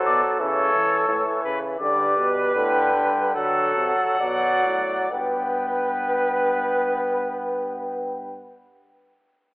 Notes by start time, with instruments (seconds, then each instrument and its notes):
Already playing: trombone F#3, flugelhorn A4
0.06 bass trombone B2, trumpet D5
0.39 bass trombone C#3, trombone E3, flugelhorn A4, trumpet C#5
0.74 bass trombone E3
1.09 bass trombone A2, trombone E3
1.44 bass trombone C#3, trumpet B4
1.80 bass trombone D3, trombone G3, flugelhorn B4, trumpet D5
2.18 bass trombone B2
2.56 bass trombone A2, trombone D3, trumpet G5
2.94 bass trombone G2
3.34 bass trombone D3, trombone F#3, flugelhorn A4, trumpet F#5
3.77 bass trombone C3
4.20 bass trombone B2, trombone F#3, flugelhorn D5
4.65 bass trombone A2
5.11 bass trombone G2, trombone B3, flugelhorn B4, trumpet G5